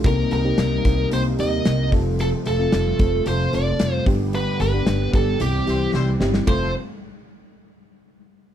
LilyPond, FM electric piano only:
\new Staff \with { instrumentName = "FM electric piano" } { \time 4/4 \key f \mixolydian \tempo 4 = 112 <bes c' ees' g'>8. <bes c' ees' g'>8. <bes c' ees' bes'>8 <bes c' ees' g'>8 <bes c' ees' g'>4 <a c' f' a'>8~ | <a c' f' a'>8. <a c' f' a'>8. <a c' f' a'>8 <a c' f' a'>8 <a c' f' a'>4 <g b d' g'>8~ | <g b d' g'>8. <g b d' g'>8. <g b d' g'>8 <g c' e' g'>8 <g c' e' g'>4 <g c' e' g'>8 | <a c' f' a'>8 r2. r8 | }